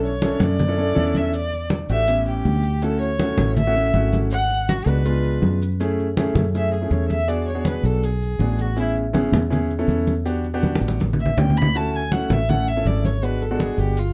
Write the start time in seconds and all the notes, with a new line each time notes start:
Already playing: B1 C#4 D4 E4 A4
0.04 C#5, high conga, maracas
0.22 C#4 D4 E4 A4, high conga, maracas
0.40 F#2 D5, high conga, low conga, maracas
0.59 high conga, low conga, maracas
0.68 C#4 D4 E4 A4
0.78 C#4 D4 E4 A4, high conga, maracas
0.95 E2 C#4 D4 E4 A4, high conga, maracas
1.15 E5, high conga, maracas
1.33 D5, high conga, maracas
1.53 high conga, maracas
1.70 high conga, maracas
1.89 A1 A3 D4 F#4 G4 E5, maracas
2.07 B3 C#4 E4 G4, high conga, maracas
2.26 G4, high conga, maracas
2.45 D2, high conga, maracas
2.63 high conga, maracas
2.82 A3 C#4 E4 F#4 A4, high conga, maracas
3.01 C#5, high conga, maracas
3.19 A3 C#4 E4 F#4, high conga, maracas
3.37 A1, high conga, low conga, maracas
3.56 E5, high conga, low conga, maracas
3.67 A3 C#4 E4 F#4
3.75 A3 C#4 E4 F#4, high conga, maracas
3.94 G#1 A3 C#4 E4 F#4, high conga, maracas
4.13 high conga, maracas
4.31 F#5, high conga, maracas
4.50 high conga, maracas
4.68 F#4, high conga, maracas
4.86 C#2 G#3 B3 D4 F#4 B4, high conga, maracas
5.05 G#3 B3 D4 F4, high conga, maracas
5.24 high conga, maracas
5.42 F#2, high conga, maracas
5.62 high conga, maracas
5.80 A3 C#4 E4 G#4, high conga, maracas
5.99 high conga, maracas
6.17 A3 C#4 E4 G#4, high conga, maracas
6.35 F#2, high conga, low conga, maracas
6.55 A3 C#4 E4 G#4 E5, high conga, maracas
6.73 G#4, high conga, maracas
6.81 A3 C#4 E4 G#4
6.91 E2 C#5, high conga, maracas
7.09 E5, high conga, maracas
7.28 B3 D4 F#4 G#4 D5, high conga, maracas
7.48 C#5, high conga, maracas
7.54 B3 D4 F#4 G#4
7.65 B4, high conga, maracas
7.83 B1 A4, high conga, maracas
8.03 G#4, high conga, maracas
8.22 high conga, maracas
8.39 A1 B3 D4 F#4 G#4, high conga, maracas
8.59 F#4, high conga, maracas
8.76 B3 C#4 E4 G#4, high conga, maracas
8.96 high conga, maracas
9.13 B3 C#4 E4 G#4, high conga, maracas
9.32 E2, high conga, low conga, maracas
9.50 B3 C#4 E4 G#4, high conga, low conga, maracas
9.70 high conga, maracas
9.78 B3 C#4 E4 A4
9.88 E2, high conga, maracas
10.07 high conga, maracas
10.25 B3 D4 F#4 G4, high conga, maracas
10.44 high conga, maracas
10.54 B3 D4 F#4 G4
10.63 high conga, maracas
10.75 high conga
10.81 A1, maracas
10.88 high conga
11.00 high conga, maracas
11.13 low conga
11.20 E5, maracas
11.26 low conga
11.37 D2 B3 C#4 E4 G4 G5, low conga, maracas
11.50 low conga
11.57 B5, maracas
11.62 low conga
11.74 A3 C#4 E4 F#4 A5, high conga, maracas
11.93 G#5, high conga, maracas
12.11 A3 C#4 E4 F#4 F#5, high conga, maracas
12.30 A1 E5, high conga, low conga, maracas
12.49 A3 C#4 E4 A4 F#5, high conga, low conga, maracas
12.67 E5, high conga, maracas
12.77 A3 C#4 E4 A4
12.85 G#1 D5, high conga, maracas
13.05 C#5, high conga, maracas
13.22 G#3 B3 D4 F#4 B4, high conga, maracas
13.41 A4, high conga, maracas
13.51 G#3 B3 D4 F#4
13.60 G#4, high conga, maracas
13.78 G1 G4, high conga, maracas
13.97 F4, high conga, maracas